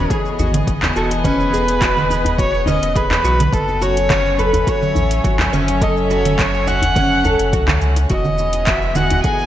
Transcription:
Already playing: E3 B3 F#4 G#4 B4 C#5 D#5
0.10 G#4, kick, closed hi-hat, shaker
0.25 djembe slap, shaker
0.39 G#1 F#4, djembe tone, djembe bass, shaker
0.54 closed hi-hat, low conga, shaker
0.67 F#1, kick, closed hi-hat, shaker
0.82 clap, djembe bass, shaker
0.96 E1 F#4 A4, shaker
1.11 closed hi-hat, djembe slap, shaker
1.24 C#4 B4, kick, closed hi-hat, low conga, shaker
1.40 shaker
1.53 G#4, djembe slap, shaker
1.68 closed hi-hat, shaker
1.81 F#4, kick, clap, closed hi-hat, shaker
1.97 low conga, shaker
2.10 djembe tone, shaker
2.24 closed hi-hat, djembe slap, djembe bass, shaker
2.39 F#4 C#5, kick, closed hi-hat, shaker
2.54 shaker
2.66 C#4 D#5, djembe slap, djembe bass, low conga, shaker
2.83 E1, closed hi-hat, shaker
2.95 G#4 B4, kick, closed hi-hat, shaker
3.10 clap, djembe bass, shaker
3.24 B1 F#4, shaker
3.39 closed hi-hat, djembe slap, djembe tone, low conga, shaker
3.52 F#1 F#3 A4, kick, closed hi-hat, shaker
3.68 djembe tone, shaker
3.81 C#4 F#4 A4 C#5, djembe slap, shaker
3.97 closed hi-hat, djembe tone, shaker
4.10 C#4, kick, clap, closed hi-hat, low conga, shaker
4.25 shaker
4.38 A4 B4, djembe tone, shaker
4.47 E5
4.53 closed hi-hat, djembe slap, djembe bass, shaker
4.67 F#4 C#5, kick, closed hi-hat, shaker
4.81 djembe slap, low conga, shaker
4.95 A1, djembe tone, djembe bass, shaker
5.11 closed hi-hat, shaker
5.24 G#1 F#4, kick, closed hi-hat, shaker
5.39 clap, djembe bass, shaker
5.53 F#1 C#4, low conga, shaker
5.68 closed hi-hat, djembe slap, shaker
5.81 A4 D#5, kick, closed hi-hat, shaker
5.97 shaker
6.10 F#4 C#5, djembe slap, shaker
6.25 closed hi-hat, low conga, shaker
6.39 C#5, kick, clap, closed hi-hat, shaker
6.54 shaker
6.67 F#4 F#5, djembe tone, shaker
6.82 closed hi-hat, djembe slap, djembe bass, shaker
6.96 C#4, kick, closed hi-hat, low conga, shaker
7.11 shaker
7.24 A4, djembe slap, djembe bass, shaker
7.39 F#1, closed hi-hat, shaker
7.53 C#2 F#4, kick, closed hi-hat, shaker
7.68 clap, djembe bass, low conga, shaker
7.81 C#2, shaker
7.96 closed hi-hat, djembe slap, djembe tone, shaker
8.10 E1 E3 F#4 D#5, kick, closed hi-hat, shaker
8.16 B3
8.25 G#4, djembe tone, low conga, shaker
8.38 djembe slap, shaker
8.53 closed hi-hat, djembe tone, shaker
8.67 F#4 E5, kick, clap, closed hi-hat, shaker
8.82 shaker
8.87 D#5
8.95 F#4 F#5, djembe tone, low conga, shaker
9.10 closed hi-hat, djembe slap, djembe bass, shaker
9.24 G#4 G#5, kick, closed hi-hat, shaker
9.39 djembe slap, shaker

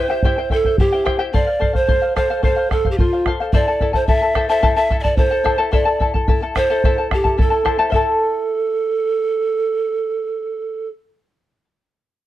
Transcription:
Already playing: C5
0.10 E4 G4 C5 E5 G5
0.23 E4 G4 C5 E5 G5, bombo low
0.38 E4 C5 G5
0.50 E4 A4 C5 E5 G5, bombo low
0.65 E4 C5 G5, bombo low
0.78 E4 G4 C5 E5 G5, bombo low
0.92 E4 C5 G5
1.05 E4 G4 C5 E5 G5, bombo rim, bombo low
1.19 E4 G4 C5 E5 G5
1.33 A4 C5 D5 F5, bombo low
1.47 C5 F5
1.60 A4 C5 F5, bombo low
1.73 C5 F5, bombo low
1.87 A4 C5 F5, bombo low
2.02 C5 F5
2.16 A4 C5 F5, bombo rim, bombo low
2.30 A4 C5 F5
2.43 A4 C5 F5, bombo low
2.56 C5 F5
2.71 A4 C5 F5, bombo rim, bombo low
2.85 C5 F5, bombo low
2.91 G4
2.98 F4 A4 C5 F5, bombo low
3.13 C5 F5
3.26 A4 C5 F5, bombo rim, bombo low
3.40 A4 C5 F5
3.53 E4 A4 C5 D5 E5 A5, bombo low
3.68 E4 A4 A5
3.81 E4 A4 E5 A5, bombo low
3.93 E4 A4 C5 A5, bombo low
4.07 E4 A4 E5 A5, bombo low
4.22 E4 A4 A5
4.35 E4 A4 C5 E5 A5, bombo rim, bombo low
4.49 E4 A4 C5 E5 A5
4.62 E4 A4 C5 E5 A5, bombo low
4.76 E4 A4 E5 A5
4.90 E4 A4 E5 A5, bombo low
5.00 D5 E5 A5
5.04 E4 A4, bombo low
5.17 E4 A4 C5 E5 A5, bombo low
5.31 E4 A4 A5
5.44 E4 A4 C5 E5 A5, bombo rim, bombo low
5.58 E4 A4 C5 E5 A5
5.72 E4 A4 C5 D5 E5 A5, bombo low
5.85 E4 A4 A5
5.99 E4 A4 E5 A5, bombo low
6.14 E4 A4 A5, bombo low
6.28 E4 A4 E5 A5, bombo low
6.42 E4 A4 A5
6.56 E4 A4 C5 E5 A5, bombo rim, bombo low
6.70 E4 A4 C5 E5 A5
6.84 E4 A4 C5 E5 A5, bombo low
6.98 E4 A4 A5
7.11 E4 G4 A4 E5 A5, bombo rim, bombo low
7.24 E4 A4 A5, bombo low
7.38 E4 A4 E5 A5, bombo low
7.50 E4 A4 A5
7.65 E4 A4 C5 E5 A5, bombo rim, bombo low
7.78 E4 A4 C5 E5 A5
7.90 E4 A4 C5 E5, bombo low
7.94 A4 A5

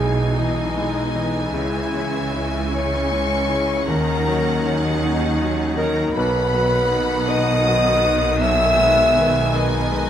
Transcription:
Already playing: B1 B2 E3 G#3 D#4 G#4 G#5
0.00 E4 D#5
0.38 E3 D#4 D#5
0.77 G#3 D#5
1.15 E3 D#5
1.52 C#2 C#3 C#4 E4 E5
1.93 G#3 C#5
2.33 E4 C#5
2.71 E4 C#5 C#6
3.11 G#3 C#5
3.49 E4 C#5
3.87 D#2 D#3 D#4 A#4 F#5 A#5
4.26 F#3 C#5
4.65 D#4 C#5
5.03 D#4 C#5
5.40 F#3 C#5
5.76 D#4 A#4 C#5 A#5
6.13 B1 B2 D#3 B3 B4 F#5 B5
6.54 F#3 B4
6.91 D#4 B4
7.28 D#4 B4 D#5 D#6
7.66 F#3 B4
8.04 D#4 B4
8.41 B1 E5 G#5 E6
8.79 G#3 B4
9.16 D#3 B4
9.54 D#4 B4 D#5
9.91 G#3 B4

